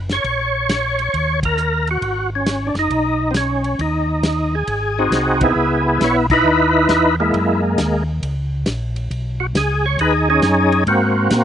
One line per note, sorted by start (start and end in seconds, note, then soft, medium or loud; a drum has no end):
0.00 0.20 F#1 medium
0.09 1.40 C#5 medium
0.09 snare soft
0.09 ride soft
0.24 1.09 A#1 medium
0.24 kick soft
0.24 ride soft
0.69 snare medium
0.69 hi-hat pedal medium
0.69 ride medium
0.99 ride soft
1.14 1.98 D#2 medium
1.14 kick soft
1.14 ride soft
1.43 1.89 A#4 medium
1.43 kick medium
1.43 ride medium
1.57 hi-hat pedal medium
1.87 2.30 F#4 medium
1.87 ride soft
2.01 2.71 G#1 medium
2.01 kick soft
2.01 ride soft
2.35 2.69 C#4 medium
2.46 snare medium
2.46 hi-hat pedal medium
2.46 ride medium
2.67 2.76 D4 medium
2.74 2.89 F#1 medium
2.74 snare soft
2.74 ride soft
2.79 3.33 D#4 loud
2.90 3.75 B1 medium
2.90 kick soft
2.90 ride soft
3.31 3.35 C4 medium
3.31 snare medium
3.31 hi-hat pedal medium
3.31 ride medium
3.37 3.81 C#4 medium
3.64 ride soft
3.79 4.63 D#2 medium
3.79 4.56 D#4 medium
3.79 kick soft
3.79 ride medium
4.23 snare medium
4.23 hi-hat pedal medium
4.23 ride medium
4.55 5.38 G#4 medium
4.67 5.09 G#1 medium
4.67 kick soft
4.67 ride medium
4.99 5.53 C4 soft
4.99 5.53 D#4 soft
4.99 5.44 F#4 medium
5.10 5.52 C2 medium
5.10 snare medium
5.10 hi-hat pedal medium
5.10 ride medium
5.41 6.26 B3 soft
5.41 6.27 E4 medium
5.41 5.87 G#4 medium
5.41 kick medium
5.41 ride medium
5.55 5.98 C#2 medium
5.88 6.02 G#4 medium
6.01 6.44 B1 medium
6.01 6.17 C#5 medium
6.01 kick soft
6.01 snare medium
6.01 hi-hat pedal medium
6.01 ride medium
6.30 7.15 D#4 medium
6.30 7.15 E4 medium
6.30 7.16 B4 loud
6.30 kick medium
6.30 crash medium
6.44 6.87 D#2 medium
6.89 7.32 E2 medium
6.89 kick soft
6.89 snare medium
6.89 hi-hat pedal medium
6.89 ride medium
7.20 8.04 G#3 soft
7.20 8.03 A#3 medium
7.20 7.61 E4 medium
7.34 7.76 F#2 medium
7.34 kick soft
7.34 ride soft
7.78 8.21 D#2 medium
7.78 kick soft
7.78 snare medium
7.78 hi-hat pedal medium
7.78 ride medium
8.22 8.65 C#2 medium
8.22 kick soft
8.22 ride medium
8.66 9.09 A#1 medium
8.66 kick soft
8.66 snare medium
8.66 hi-hat pedal medium
8.66 ride medium
8.96 ride soft
9.11 9.53 B1 medium
9.11 kick soft
9.11 ride soft
9.40 9.47 F#4 medium
9.55 9.97 C#2 medium
9.55 9.86 G#4 medium
9.55 kick soft
9.55 snare medium
9.55 hi-hat pedal medium
9.55 ride medium
9.86 10.00 C#5 medium
9.98 10.41 D#2 medium
9.98 10.29 D#4 medium
9.98 10.29 G#4 medium
9.98 10.14 B4 medium
9.98 kick soft
9.98 ride medium
10.30 10.84 C#4 medium
10.30 10.84 D#4 medium
10.30 10.84 G#4 loud
10.42 10.85 F#2 loud
10.42 kick soft
10.42 snare medium
10.42 hi-hat pedal medium
10.42 ride medium
10.72 ride soft
10.86 11.29 G#2 medium
10.86 11.44 A#3 medium
10.86 11.44 C4 medium
10.86 11.44 F#4 medium
10.86 kick soft
10.86 ride soft
11.30 11.44 A#2 medium
11.30 kick soft
11.30 snare medium
11.30 hi-hat pedal medium
11.30 ride medium